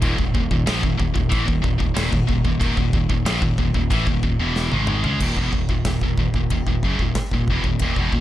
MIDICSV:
0, 0, Header, 1, 6, 480
1, 0, Start_track
1, 0, Tempo, 647948
1, 20, Time_signature, 4, 2, 24, 8
1, 6078, End_track
2, 0, Start_track
2, 0, Title_t, "Distorted electric guitar"
2, 0, Program_c, 0, 30
2, 12, Note_on_c, 0, 39, 100
2, 16, Note_on_c, 0, 46, 108
2, 123, Note_off_c, 0, 39, 0
2, 123, Note_off_c, 0, 46, 0
2, 132, Note_on_c, 0, 39, 75
2, 132, Note_on_c, 0, 46, 73
2, 247, Note_off_c, 0, 39, 0
2, 248, Note_off_c, 0, 46, 0
2, 256, Note_on_c, 0, 39, 65
2, 257, Note_on_c, 0, 46, 76
2, 370, Note_off_c, 0, 39, 0
2, 375, Note_off_c, 0, 46, 0
2, 379, Note_on_c, 0, 39, 74
2, 384, Note_on_c, 0, 46, 64
2, 480, Note_off_c, 0, 46, 0
2, 489, Note_on_c, 0, 46, 85
2, 494, Note_on_c, 0, 53, 120
2, 500, Note_off_c, 0, 39, 0
2, 594, Note_off_c, 0, 46, 0
2, 603, Note_on_c, 0, 46, 70
2, 606, Note_on_c, 0, 39, 65
2, 610, Note_off_c, 0, 53, 0
2, 713, Note_off_c, 0, 39, 0
2, 721, Note_off_c, 0, 46, 0
2, 722, Note_on_c, 0, 39, 70
2, 730, Note_on_c, 0, 46, 63
2, 834, Note_off_c, 0, 39, 0
2, 835, Note_off_c, 0, 46, 0
2, 843, Note_on_c, 0, 39, 57
2, 844, Note_on_c, 0, 46, 70
2, 957, Note_off_c, 0, 46, 0
2, 960, Note_on_c, 0, 45, 90
2, 960, Note_on_c, 0, 52, 101
2, 972, Note_off_c, 0, 39, 0
2, 1076, Note_off_c, 0, 45, 0
2, 1077, Note_on_c, 0, 39, 69
2, 1079, Note_on_c, 0, 46, 71
2, 1083, Note_off_c, 0, 52, 0
2, 1192, Note_off_c, 0, 39, 0
2, 1197, Note_off_c, 0, 46, 0
2, 1201, Note_on_c, 0, 39, 75
2, 1206, Note_on_c, 0, 46, 75
2, 1312, Note_off_c, 0, 39, 0
2, 1317, Note_off_c, 0, 46, 0
2, 1321, Note_on_c, 0, 39, 74
2, 1326, Note_on_c, 0, 46, 81
2, 1432, Note_off_c, 0, 39, 0
2, 1435, Note_off_c, 0, 46, 0
2, 1441, Note_on_c, 0, 39, 84
2, 1444, Note_on_c, 0, 46, 102
2, 1556, Note_off_c, 0, 46, 0
2, 1559, Note_off_c, 0, 39, 0
2, 1565, Note_on_c, 0, 46, 71
2, 1567, Note_on_c, 0, 39, 60
2, 1674, Note_off_c, 0, 46, 0
2, 1678, Note_off_c, 0, 39, 0
2, 1683, Note_on_c, 0, 46, 68
2, 1687, Note_on_c, 0, 39, 58
2, 1804, Note_off_c, 0, 39, 0
2, 1807, Note_off_c, 0, 46, 0
2, 1813, Note_on_c, 0, 39, 59
2, 1816, Note_on_c, 0, 46, 67
2, 1917, Note_off_c, 0, 39, 0
2, 1923, Note_off_c, 0, 46, 0
2, 1926, Note_on_c, 0, 39, 110
2, 1932, Note_on_c, 0, 46, 103
2, 2046, Note_off_c, 0, 39, 0
2, 2049, Note_off_c, 0, 46, 0
2, 2059, Note_on_c, 0, 39, 67
2, 2062, Note_on_c, 0, 46, 77
2, 2172, Note_off_c, 0, 39, 0
2, 2173, Note_off_c, 0, 46, 0
2, 2181, Note_on_c, 0, 39, 60
2, 2182, Note_on_c, 0, 46, 70
2, 2284, Note_off_c, 0, 39, 0
2, 2293, Note_on_c, 0, 39, 70
2, 2294, Note_off_c, 0, 46, 0
2, 2303, Note_on_c, 0, 46, 66
2, 2402, Note_off_c, 0, 46, 0
2, 2411, Note_on_c, 0, 46, 94
2, 2417, Note_off_c, 0, 39, 0
2, 2420, Note_on_c, 0, 53, 97
2, 2529, Note_off_c, 0, 46, 0
2, 2533, Note_off_c, 0, 53, 0
2, 2538, Note_on_c, 0, 46, 72
2, 2540, Note_on_c, 0, 39, 75
2, 2648, Note_off_c, 0, 39, 0
2, 2648, Note_off_c, 0, 46, 0
2, 2657, Note_on_c, 0, 39, 70
2, 2657, Note_on_c, 0, 46, 69
2, 2766, Note_off_c, 0, 39, 0
2, 2771, Note_off_c, 0, 46, 0
2, 2775, Note_on_c, 0, 39, 55
2, 2780, Note_on_c, 0, 46, 73
2, 2888, Note_off_c, 0, 46, 0
2, 2891, Note_on_c, 0, 45, 83
2, 2897, Note_on_c, 0, 52, 106
2, 2898, Note_off_c, 0, 39, 0
2, 3009, Note_off_c, 0, 45, 0
2, 3011, Note_on_c, 0, 39, 63
2, 3012, Note_off_c, 0, 52, 0
2, 3014, Note_on_c, 0, 46, 72
2, 3126, Note_off_c, 0, 39, 0
2, 3126, Note_off_c, 0, 46, 0
2, 3135, Note_on_c, 0, 39, 64
2, 3135, Note_on_c, 0, 46, 74
2, 3252, Note_off_c, 0, 39, 0
2, 3252, Note_off_c, 0, 46, 0
2, 3255, Note_on_c, 0, 40, 83
2, 3255, Note_on_c, 0, 47, 99
2, 3263, Note_on_c, 0, 52, 100
2, 3491, Note_off_c, 0, 40, 0
2, 3491, Note_off_c, 0, 47, 0
2, 3495, Note_off_c, 0, 52, 0
2, 3495, Note_on_c, 0, 44, 85
2, 3502, Note_on_c, 0, 51, 90
2, 3506, Note_on_c, 0, 56, 86
2, 3725, Note_off_c, 0, 56, 0
2, 3729, Note_off_c, 0, 44, 0
2, 3731, Note_off_c, 0, 51, 0
2, 3732, Note_on_c, 0, 49, 74
2, 3733, Note_on_c, 0, 56, 93
2, 3850, Note_off_c, 0, 49, 0
2, 3850, Note_off_c, 0, 56, 0
2, 3863, Note_on_c, 0, 39, 82
2, 3869, Note_on_c, 0, 46, 97
2, 3975, Note_off_c, 0, 39, 0
2, 3978, Note_off_c, 0, 46, 0
2, 3979, Note_on_c, 0, 40, 81
2, 3984, Note_on_c, 0, 47, 101
2, 4093, Note_off_c, 0, 40, 0
2, 4095, Note_off_c, 0, 47, 0
2, 4098, Note_on_c, 0, 46, 67
2, 4101, Note_on_c, 0, 39, 59
2, 4212, Note_off_c, 0, 39, 0
2, 4216, Note_off_c, 0, 46, 0
2, 4220, Note_on_c, 0, 39, 58
2, 4225, Note_on_c, 0, 46, 65
2, 4334, Note_off_c, 0, 39, 0
2, 4337, Note_off_c, 0, 46, 0
2, 4343, Note_on_c, 0, 39, 54
2, 4346, Note_on_c, 0, 46, 68
2, 4459, Note_off_c, 0, 39, 0
2, 4464, Note_off_c, 0, 46, 0
2, 4468, Note_on_c, 0, 39, 67
2, 4471, Note_on_c, 0, 46, 69
2, 4578, Note_off_c, 0, 46, 0
2, 4579, Note_off_c, 0, 39, 0
2, 4587, Note_on_c, 0, 46, 63
2, 4588, Note_on_c, 0, 39, 59
2, 4701, Note_off_c, 0, 39, 0
2, 4704, Note_off_c, 0, 46, 0
2, 4710, Note_on_c, 0, 39, 56
2, 4714, Note_on_c, 0, 46, 52
2, 4817, Note_off_c, 0, 39, 0
2, 4823, Note_off_c, 0, 46, 0
2, 4826, Note_on_c, 0, 39, 52
2, 4832, Note_on_c, 0, 46, 64
2, 4936, Note_off_c, 0, 39, 0
2, 4939, Note_off_c, 0, 46, 0
2, 4945, Note_on_c, 0, 39, 62
2, 4948, Note_on_c, 0, 46, 63
2, 5063, Note_off_c, 0, 39, 0
2, 5064, Note_off_c, 0, 46, 0
2, 5069, Note_on_c, 0, 42, 87
2, 5078, Note_on_c, 0, 49, 99
2, 5178, Note_off_c, 0, 42, 0
2, 5182, Note_off_c, 0, 49, 0
2, 5190, Note_on_c, 0, 39, 61
2, 5195, Note_on_c, 0, 46, 70
2, 5298, Note_off_c, 0, 39, 0
2, 5308, Note_off_c, 0, 46, 0
2, 5432, Note_on_c, 0, 39, 57
2, 5434, Note_on_c, 0, 46, 63
2, 5546, Note_off_c, 0, 39, 0
2, 5548, Note_off_c, 0, 46, 0
2, 5556, Note_on_c, 0, 40, 85
2, 5563, Note_on_c, 0, 47, 81
2, 5661, Note_off_c, 0, 40, 0
2, 5664, Note_off_c, 0, 47, 0
2, 5679, Note_on_c, 0, 39, 51
2, 5680, Note_on_c, 0, 46, 57
2, 5784, Note_off_c, 0, 39, 0
2, 5787, Note_off_c, 0, 46, 0
2, 5793, Note_on_c, 0, 39, 95
2, 5796, Note_on_c, 0, 46, 95
2, 5899, Note_off_c, 0, 39, 0
2, 5901, Note_off_c, 0, 46, 0
2, 5914, Note_on_c, 0, 40, 89
2, 5918, Note_on_c, 0, 47, 90
2, 6020, Note_off_c, 0, 40, 0
2, 6022, Note_off_c, 0, 47, 0
2, 6030, Note_on_c, 0, 39, 61
2, 6033, Note_on_c, 0, 46, 63
2, 6078, Note_off_c, 0, 39, 0
2, 6078, Note_off_c, 0, 46, 0
2, 6078, End_track
3, 0, Start_track
3, 0, Title_t, "Fretless electric bass"
3, 0, Program_c, 1, 35
3, 20, Note_on_c, 1, 27, 91
3, 130, Note_off_c, 1, 27, 0
3, 134, Note_on_c, 1, 27, 91
3, 249, Note_off_c, 1, 27, 0
3, 260, Note_on_c, 1, 27, 80
3, 372, Note_off_c, 1, 27, 0
3, 378, Note_on_c, 1, 27, 88
3, 491, Note_off_c, 1, 27, 0
3, 498, Note_on_c, 1, 34, 98
3, 610, Note_off_c, 1, 34, 0
3, 621, Note_on_c, 1, 27, 71
3, 732, Note_off_c, 1, 27, 0
3, 736, Note_on_c, 1, 27, 73
3, 850, Note_off_c, 1, 27, 0
3, 856, Note_on_c, 1, 27, 74
3, 970, Note_off_c, 1, 27, 0
3, 976, Note_on_c, 1, 33, 91
3, 1090, Note_off_c, 1, 33, 0
3, 1095, Note_on_c, 1, 27, 86
3, 1209, Note_off_c, 1, 27, 0
3, 1217, Note_on_c, 1, 27, 77
3, 1330, Note_off_c, 1, 27, 0
3, 1335, Note_on_c, 1, 27, 83
3, 1449, Note_off_c, 1, 27, 0
3, 1453, Note_on_c, 1, 27, 100
3, 1568, Note_off_c, 1, 27, 0
3, 1578, Note_on_c, 1, 27, 77
3, 1686, Note_off_c, 1, 27, 0
3, 1691, Note_on_c, 1, 27, 78
3, 1807, Note_off_c, 1, 27, 0
3, 1817, Note_on_c, 1, 27, 90
3, 1930, Note_off_c, 1, 27, 0
3, 1936, Note_on_c, 1, 27, 87
3, 2050, Note_off_c, 1, 27, 0
3, 2056, Note_on_c, 1, 27, 87
3, 2170, Note_off_c, 1, 27, 0
3, 2177, Note_on_c, 1, 27, 89
3, 2291, Note_off_c, 1, 27, 0
3, 2296, Note_on_c, 1, 27, 78
3, 2410, Note_off_c, 1, 27, 0
3, 2424, Note_on_c, 1, 34, 89
3, 2531, Note_off_c, 1, 34, 0
3, 2536, Note_on_c, 1, 27, 70
3, 2648, Note_off_c, 1, 27, 0
3, 2652, Note_on_c, 1, 27, 75
3, 2768, Note_off_c, 1, 27, 0
3, 2774, Note_on_c, 1, 27, 83
3, 2889, Note_off_c, 1, 27, 0
3, 2896, Note_on_c, 1, 33, 90
3, 3010, Note_off_c, 1, 33, 0
3, 3016, Note_on_c, 1, 27, 80
3, 3128, Note_off_c, 1, 27, 0
3, 3132, Note_on_c, 1, 27, 75
3, 3248, Note_off_c, 1, 27, 0
3, 3257, Note_on_c, 1, 28, 86
3, 3482, Note_off_c, 1, 28, 0
3, 3500, Note_on_c, 1, 32, 99
3, 3724, Note_off_c, 1, 32, 0
3, 3744, Note_on_c, 1, 37, 94
3, 3855, Note_off_c, 1, 37, 0
3, 3858, Note_on_c, 1, 27, 76
3, 3971, Note_off_c, 1, 27, 0
3, 3976, Note_on_c, 1, 28, 92
3, 4090, Note_off_c, 1, 28, 0
3, 4094, Note_on_c, 1, 27, 83
3, 4209, Note_off_c, 1, 27, 0
3, 4216, Note_on_c, 1, 27, 68
3, 4330, Note_off_c, 1, 27, 0
3, 4337, Note_on_c, 1, 27, 75
3, 4451, Note_off_c, 1, 27, 0
3, 4457, Note_on_c, 1, 27, 59
3, 4570, Note_off_c, 1, 27, 0
3, 4579, Note_on_c, 1, 27, 71
3, 4690, Note_off_c, 1, 27, 0
3, 4694, Note_on_c, 1, 27, 67
3, 4809, Note_off_c, 1, 27, 0
3, 4820, Note_on_c, 1, 27, 75
3, 4932, Note_off_c, 1, 27, 0
3, 4940, Note_on_c, 1, 27, 74
3, 5052, Note_off_c, 1, 27, 0
3, 5058, Note_on_c, 1, 30, 70
3, 5171, Note_off_c, 1, 30, 0
3, 5183, Note_on_c, 1, 27, 72
3, 5293, Note_off_c, 1, 27, 0
3, 5421, Note_on_c, 1, 27, 67
3, 5532, Note_off_c, 1, 27, 0
3, 5536, Note_on_c, 1, 28, 84
3, 5649, Note_off_c, 1, 28, 0
3, 5660, Note_on_c, 1, 27, 83
3, 5772, Note_off_c, 1, 27, 0
3, 5778, Note_on_c, 1, 27, 79
3, 5890, Note_off_c, 1, 27, 0
3, 5902, Note_on_c, 1, 28, 87
3, 6013, Note_off_c, 1, 28, 0
3, 6023, Note_on_c, 1, 27, 78
3, 6078, Note_off_c, 1, 27, 0
3, 6078, End_track
4, 0, Start_track
4, 0, Title_t, "Muted distorted electric guitar strokes"
4, 5306, Note_on_c, 9, 29, 55
4, 5381, Note_off_c, 9, 29, 0
4, 6078, End_track
5, 0, Start_track
5, 0, Title_t, "Muted fretless electric bass strokes"
5, 5301, Note_on_c, 9, 29, 39
5, 5375, Note_off_c, 9, 29, 0
5, 6078, End_track
6, 0, Start_track
6, 0, Title_t, "Drums"
6, 15, Note_on_c, 9, 49, 58
6, 17, Note_on_c, 9, 36, 109
6, 89, Note_off_c, 9, 49, 0
6, 91, Note_off_c, 9, 36, 0
6, 137, Note_on_c, 9, 36, 88
6, 211, Note_off_c, 9, 36, 0
6, 257, Note_on_c, 9, 36, 103
6, 331, Note_off_c, 9, 36, 0
6, 377, Note_on_c, 9, 36, 92
6, 451, Note_off_c, 9, 36, 0
6, 497, Note_on_c, 9, 49, 58
6, 498, Note_on_c, 9, 38, 119
6, 571, Note_off_c, 9, 49, 0
6, 572, Note_off_c, 9, 38, 0
6, 617, Note_on_c, 9, 36, 87
6, 691, Note_off_c, 9, 36, 0
6, 738, Note_on_c, 9, 36, 99
6, 812, Note_off_c, 9, 36, 0
6, 856, Note_on_c, 9, 36, 99
6, 930, Note_off_c, 9, 36, 0
6, 975, Note_on_c, 9, 36, 110
6, 976, Note_on_c, 9, 49, 57
6, 1049, Note_off_c, 9, 36, 0
6, 1050, Note_off_c, 9, 49, 0
6, 1096, Note_on_c, 9, 36, 97
6, 1170, Note_off_c, 9, 36, 0
6, 1215, Note_on_c, 9, 36, 94
6, 1289, Note_off_c, 9, 36, 0
6, 1335, Note_on_c, 9, 36, 87
6, 1409, Note_off_c, 9, 36, 0
6, 1456, Note_on_c, 9, 38, 117
6, 1456, Note_on_c, 9, 49, 69
6, 1530, Note_off_c, 9, 49, 0
6, 1531, Note_off_c, 9, 38, 0
6, 1575, Note_on_c, 9, 36, 99
6, 1649, Note_off_c, 9, 36, 0
6, 1694, Note_on_c, 9, 36, 85
6, 1768, Note_off_c, 9, 36, 0
6, 1813, Note_on_c, 9, 36, 92
6, 1887, Note_off_c, 9, 36, 0
6, 1933, Note_on_c, 9, 36, 104
6, 1938, Note_on_c, 9, 49, 66
6, 2007, Note_off_c, 9, 36, 0
6, 2012, Note_off_c, 9, 49, 0
6, 2053, Note_on_c, 9, 36, 90
6, 2127, Note_off_c, 9, 36, 0
6, 2172, Note_on_c, 9, 36, 105
6, 2246, Note_off_c, 9, 36, 0
6, 2293, Note_on_c, 9, 36, 96
6, 2367, Note_off_c, 9, 36, 0
6, 2417, Note_on_c, 9, 38, 120
6, 2417, Note_on_c, 9, 49, 69
6, 2491, Note_off_c, 9, 38, 0
6, 2491, Note_off_c, 9, 49, 0
6, 2533, Note_on_c, 9, 36, 91
6, 2607, Note_off_c, 9, 36, 0
6, 2653, Note_on_c, 9, 36, 93
6, 2727, Note_off_c, 9, 36, 0
6, 2773, Note_on_c, 9, 36, 83
6, 2847, Note_off_c, 9, 36, 0
6, 2894, Note_on_c, 9, 36, 100
6, 2899, Note_on_c, 9, 49, 56
6, 2968, Note_off_c, 9, 36, 0
6, 2973, Note_off_c, 9, 49, 0
6, 3013, Note_on_c, 9, 36, 89
6, 3087, Note_off_c, 9, 36, 0
6, 3133, Note_on_c, 9, 36, 87
6, 3207, Note_off_c, 9, 36, 0
6, 3379, Note_on_c, 9, 38, 68
6, 3453, Note_off_c, 9, 38, 0
6, 3494, Note_on_c, 9, 48, 70
6, 3568, Note_off_c, 9, 48, 0
6, 3608, Note_on_c, 9, 45, 92
6, 3682, Note_off_c, 9, 45, 0
6, 3733, Note_on_c, 9, 43, 90
6, 3807, Note_off_c, 9, 43, 0
6, 3854, Note_on_c, 9, 36, 76
6, 3855, Note_on_c, 9, 57, 103
6, 3928, Note_off_c, 9, 36, 0
6, 3929, Note_off_c, 9, 57, 0
6, 3975, Note_on_c, 9, 36, 73
6, 4049, Note_off_c, 9, 36, 0
6, 4094, Note_on_c, 9, 36, 85
6, 4168, Note_off_c, 9, 36, 0
6, 4214, Note_on_c, 9, 36, 84
6, 4288, Note_off_c, 9, 36, 0
6, 4333, Note_on_c, 9, 38, 104
6, 4333, Note_on_c, 9, 53, 64
6, 4335, Note_on_c, 9, 36, 86
6, 4407, Note_off_c, 9, 53, 0
6, 4408, Note_off_c, 9, 38, 0
6, 4409, Note_off_c, 9, 36, 0
6, 4455, Note_on_c, 9, 36, 82
6, 4529, Note_off_c, 9, 36, 0
6, 4575, Note_on_c, 9, 36, 82
6, 4649, Note_off_c, 9, 36, 0
6, 4696, Note_on_c, 9, 36, 83
6, 4770, Note_off_c, 9, 36, 0
6, 4817, Note_on_c, 9, 53, 54
6, 4818, Note_on_c, 9, 36, 73
6, 4892, Note_off_c, 9, 36, 0
6, 4892, Note_off_c, 9, 53, 0
6, 4938, Note_on_c, 9, 36, 75
6, 5012, Note_off_c, 9, 36, 0
6, 5059, Note_on_c, 9, 36, 76
6, 5133, Note_off_c, 9, 36, 0
6, 5180, Note_on_c, 9, 36, 76
6, 5254, Note_off_c, 9, 36, 0
6, 5298, Note_on_c, 9, 36, 76
6, 5298, Note_on_c, 9, 38, 102
6, 5298, Note_on_c, 9, 53, 62
6, 5372, Note_off_c, 9, 38, 0
6, 5372, Note_off_c, 9, 53, 0
6, 5373, Note_off_c, 9, 36, 0
6, 5419, Note_on_c, 9, 36, 77
6, 5493, Note_off_c, 9, 36, 0
6, 5539, Note_on_c, 9, 36, 74
6, 5613, Note_off_c, 9, 36, 0
6, 5659, Note_on_c, 9, 36, 75
6, 5733, Note_off_c, 9, 36, 0
6, 5774, Note_on_c, 9, 53, 69
6, 5779, Note_on_c, 9, 36, 78
6, 5848, Note_off_c, 9, 53, 0
6, 5853, Note_off_c, 9, 36, 0
6, 5899, Note_on_c, 9, 36, 74
6, 5973, Note_off_c, 9, 36, 0
6, 6018, Note_on_c, 9, 36, 80
6, 6078, Note_off_c, 9, 36, 0
6, 6078, End_track
0, 0, End_of_file